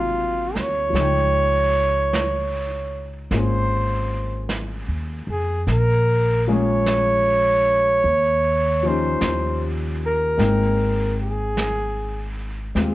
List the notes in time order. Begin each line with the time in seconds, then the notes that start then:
Already playing: G#1 C3 F#3 A#3 D#4 F4
0.55 D2 C#5, snare
0.90 C#2 F3 G#3
0.95 D#4, brush sweep, snare
1.01 G5
2.13 brush sweep, snare, hi-hat pedal
3.31 G#1 A#3 C#4 F4 G#4, brush sweep, snare
3.36 C5
4.49 brush sweep, snare, hi-hat pedal
4.88 D#2
5.27 F2
5.31 G#4
5.67 A#1, brush sweep, snare
5.71 A#4
6.47 F3 G#3 A#3 C#4 G#4
6.51 C#5
6.86 brush sweep, snare, hi-hat pedal
8.03 D#2, brush sweep
8.83 F3 A#3 C#4 C5
8.87 D#4 G4
9.21 D#2, brush sweep, snare, hi-hat pedal
10.06 A#4
10.37 G#1 G#3 A#3 C4 D#4 G5, brush sweep, snare
11.23 G#4
11.57 brush sweep, snare, hi-hat pedal
12.75 D#2 G#3 C4 F4 G#4, brush sweep, snare